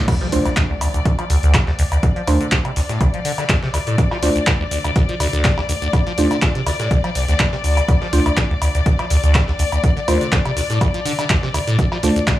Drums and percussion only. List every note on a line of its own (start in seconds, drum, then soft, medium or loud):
0.08 kick loud
0.08 closed hi-hat medium
0.08 crash loud
0.08 cowbell medium
0.08 shaker soft
0.21 snare soft
0.32 closed hi-hat medium
0.32 open hi-hat loud
0.32 shaker medium
0.45 closed hi-hat medium
0.45 cowbell medium
0.45 shaker soft
0.57 kick loud
0.57 snare loud
0.57 clap loud
0.57 closed hi-hat medium
0.57 shaker soft
0.81 closed hi-hat medium
0.81 open hi-hat loud
0.81 cowbell medium
0.81 shaker medium
0.94 closed hi-hat medium
0.94 shaker soft
1.05 kick loud
1.05 closed hi-hat medium
1.05 shaker soft
1.19 closed hi-hat soft
1.19 cowbell medium
1.30 closed hi-hat medium
1.30 open hi-hat loud
1.30 shaker medium
1.43 closed hi-hat medium
1.43 shaker soft
1.54 kick loud
1.54 snare loud
1.54 clap loud
1.54 closed hi-hat medium
1.54 cowbell medium
1.54 shaker soft
1.67 snare medium
1.79 closed hi-hat medium
1.79 open hi-hat loud
1.79 shaker medium
1.92 closed hi-hat medium
1.92 cowbell medium
1.92 shaker soft
2.03 kick loud
2.03 closed hi-hat medium
2.03 shaker soft
2.16 closed hi-hat soft
2.27 closed hi-hat medium
2.27 open hi-hat loud
2.27 cowbell medium
2.27 shaker medium
2.41 closed hi-hat medium
2.41 shaker soft
2.52 kick loud
2.52 snare loud
2.52 clap loud
2.52 closed hi-hat medium
2.52 shaker soft
2.65 closed hi-hat soft
2.65 cowbell medium
2.76 open hi-hat loud
2.76 open hi-hat medium
2.76 shaker medium
2.89 snare soft
2.89 closed hi-hat medium
2.89 shaker soft
3.01 kick loud
3.01 closed hi-hat medium
3.01 cowbell medium
3.01 shaker soft
3.14 closed hi-hat soft
3.25 closed hi-hat medium
3.25 open hi-hat loud
3.25 shaker medium
3.38 snare soft
3.38 closed hi-hat medium
3.38 cowbell medium
3.38 shaker soft
3.49 kick loud
3.49 snare loud
3.49 clap loud
3.49 closed hi-hat medium
3.49 shaker soft
3.63 snare medium
3.74 closed hi-hat medium
3.74 open hi-hat loud
3.74 cowbell medium
3.74 shaker medium
3.87 closed hi-hat medium
3.87 closed hi-hat soft
3.87 shaker soft
3.98 kick loud
3.98 closed hi-hat medium
3.98 shaker soft
4.11 snare soft
4.11 cowbell medium
4.23 closed hi-hat medium
4.23 open hi-hat loud
4.23 shaker medium
4.36 closed hi-hat medium
4.36 shaker soft
4.47 kick loud
4.47 snare loud
4.47 clap loud
4.47 closed hi-hat medium
4.47 cowbell medium
4.47 shaker soft
4.71 closed hi-hat medium
4.71 open hi-hat loud
4.71 shaker medium
4.84 closed hi-hat medium
4.84 cowbell medium
4.84 shaker soft
4.96 kick loud
4.96 closed hi-hat medium
4.96 shaker soft
5.09 closed hi-hat soft
5.20 closed hi-hat medium
5.20 open hi-hat loud
5.20 cowbell medium
5.20 shaker medium
5.33 closed hi-hat medium
5.33 shaker soft
5.44 kick loud
5.44 snare loud
5.44 clap loud
5.44 closed hi-hat medium
5.44 shaker soft
5.58 snare medium
5.58 cowbell medium
5.69 closed hi-hat medium
5.69 open hi-hat loud
5.69 shaker medium
5.82 closed hi-hat soft
5.82 shaker soft
5.93 kick loud
5.93 closed hi-hat medium
5.93 cowbell medium
5.93 shaker soft
6.07 closed hi-hat soft
6.18 closed hi-hat medium
6.18 open hi-hat loud
6.18 shaker medium
6.31 closed hi-hat medium
6.31 cowbell medium
6.31 shaker soft
6.42 kick loud
6.42 snare loud
6.42 clap loud
6.42 closed hi-hat medium
6.42 shaker soft
6.55 closed hi-hat soft
6.67 open hi-hat loud
6.67 open hi-hat medium
6.67 cowbell medium
6.67 shaker medium
6.80 snare soft
6.80 closed hi-hat medium
6.80 shaker soft
6.91 kick loud
6.91 closed hi-hat medium
6.91 shaker soft
7.04 closed hi-hat soft
7.04 cowbell medium
7.15 closed hi-hat medium
7.15 open hi-hat loud
7.15 shaker medium
7.28 snare soft
7.28 closed hi-hat medium
7.28 shaker soft
7.40 kick loud
7.40 snare loud
7.40 clap loud
7.40 closed hi-hat medium
7.40 cowbell medium
7.40 shaker soft
7.53 snare medium
7.64 closed hi-hat medium
7.64 open hi-hat loud
7.64 shaker medium
7.77 closed hi-hat soft
7.77 cowbell medium
7.77 shaker soft
7.88 kick loud
7.88 closed hi-hat medium
7.88 cowbell medium
7.88 shaker soft
8.02 snare soft
8.13 closed hi-hat medium
8.13 open hi-hat loud
8.13 shaker medium
8.26 closed hi-hat medium
8.26 cowbell medium
8.26 shaker soft
8.37 kick loud
8.37 snare loud
8.37 clap loud
8.37 closed hi-hat medium
8.37 shaker soft
8.62 closed hi-hat medium
8.62 open hi-hat loud
8.62 cowbell medium
8.62 shaker medium
8.75 closed hi-hat medium
8.75 shaker soft
8.86 kick loud
8.86 closed hi-hat medium
8.86 shaker soft
8.99 closed hi-hat soft
8.99 cowbell medium
9.10 closed hi-hat medium
9.10 open hi-hat loud
9.10 shaker medium
9.24 closed hi-hat medium
9.24 shaker soft
9.35 kick loud
9.35 snare loud
9.35 clap loud
9.35 closed hi-hat medium
9.35 cowbell medium
9.35 shaker soft
9.48 snare medium
9.59 closed hi-hat medium
9.59 open hi-hat loud
9.59 shaker medium
9.72 closed hi-hat medium
9.72 cowbell medium
9.72 shaker soft
9.84 kick loud
9.84 closed hi-hat medium
9.84 shaker soft
9.97 closed hi-hat soft
10.08 closed hi-hat medium
10.08 open hi-hat loud
10.08 cowbell medium
10.08 shaker medium
10.21 closed hi-hat medium
10.21 shaker soft
10.32 kick loud
10.32 snare loud
10.32 clap loud
10.32 closed hi-hat medium
10.32 shaker soft
10.45 closed hi-hat soft
10.45 cowbell medium
10.57 open hi-hat loud
10.57 open hi-hat medium
10.57 shaker medium
10.70 snare soft
10.70 closed hi-hat medium
10.70 shaker soft
10.81 kick loud
10.81 closed hi-hat medium
10.81 cowbell medium
10.81 shaker soft
10.94 closed hi-hat soft
11.06 closed hi-hat medium
11.06 open hi-hat loud
11.06 shaker medium
11.19 snare soft
11.19 closed hi-hat medium
11.19 cowbell medium
11.19 shaker soft
11.30 kick loud
11.30 snare loud
11.30 clap loud
11.30 closed hi-hat medium
11.30 shaker soft
11.43 snare medium
11.54 closed hi-hat medium
11.54 open hi-hat loud
11.54 cowbell medium
11.54 shaker medium
11.67 closed hi-hat medium
11.67 closed hi-hat soft
11.67 shaker soft
11.79 kick loud
11.79 closed hi-hat medium
11.79 shaker soft
11.92 snare soft
11.92 cowbell medium
12.03 closed hi-hat medium
12.03 open hi-hat loud
12.03 shaker medium
12.16 closed hi-hat medium
12.16 shaker soft
12.27 kick loud
12.27 snare loud
12.27 clap loud
12.27 closed hi-hat medium
12.27 cowbell medium
12.27 shaker soft